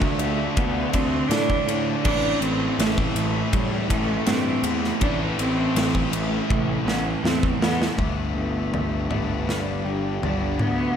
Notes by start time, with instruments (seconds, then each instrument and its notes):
Already playing: distorted electric guitar D3 A3 D4 F4, cello A3
0.02 kick
0.17 picked electric bass D2, cello A3, ride
0.52 cello A3 B3
0.57 picked electric bass D2, kick, ride
0.89 cello C4
0.93 picked electric bass D2, distorted electric guitar A3 D4, kick, ride
0.98 distorted electric guitar D3
1.28 picked electric bass A2, distorted electric guitar D3, cello D4, snare, ride
1.32 distorted electric guitar A3 D4
1.50 kick
1.67 picked electric bass A2, distorted electric guitar A3 D4 F4, ride
1.71 distorted electric guitar D3
2.03 picked electric bass A1, distorted electric guitar A2 E3 A3, cello D4, kick, crash
2.07 distorted electric guitar A3 C4 E4
2.39 picked electric bass A1, cello C4, ride
2.79 picked electric bass A1, cello A3, snare, ride
2.98 kick
3.14 picked electric bass A1, cello A3, ride
3.53 picked electric bass A2, cello G3, kick, ride
3.89 picked electric bass A1, distorted electric guitar E3 A3, cello A3, kick, ride
3.94 distorted electric guitar A2
4.26 picked electric bass G2, distorted electric guitar A2 E3, cello C4, snare, ride
4.32 distorted electric guitar A3
4.63 picked electric bass E2, distorted electric guitar A2 E3 A3 C4 E4, ride
4.84 snare
5.01 picked electric bass A1, distorted electric guitar A2 E3 A3 C4 E4, cello D4, kick, ride
5.06 distorted electric guitar A3
5.38 picked electric bass A1, cello C4, ride
5.75 picked electric bass A1, snare, ride
5.95 kick
6.12 picked electric bass A1, cello A3, ride
6.49 picked electric bass A1, cello A3, kick, high tom
6.85 picked electric bass A1, distorted electric guitar E3 A3, cello B3, snare
6.89 distorted electric guitar A2
7.21 picked electric bass E2, distorted electric guitar A2, cello C4
7.25 distorted electric guitar E3 A3, snare
7.43 kick
7.60 picked electric bass E2, distorted electric guitar A2 E3 A3 C4 E4, cello B3, snare
7.82 snare
7.97 picked electric bass G1, distorted electric guitar G2 D3 G3 B3 D4, clean electric guitar G2, cello A3, kick, floor tom
8.35 picked electric bass G1, clean electric guitar B3
8.73 picked electric bass G1, clean electric guitar G3, floor tom
9.10 picked electric bass G1, distorted electric guitar G2 D3 G3 B3 D4, clean electric guitar B3, floor tom, mid tom
9.47 picked electric bass G1, cello G3, clean electric guitar D4, snare
9.85 picked electric bass G1, clean electric guitar G4
10.22 picked electric bass G1, distorted electric guitar G2 D3 G3 B3 D4, cello G3, clean electric guitar D4, floor tom
10.58 picked electric bass D2, cello B3, clean electric guitar B3, mid tom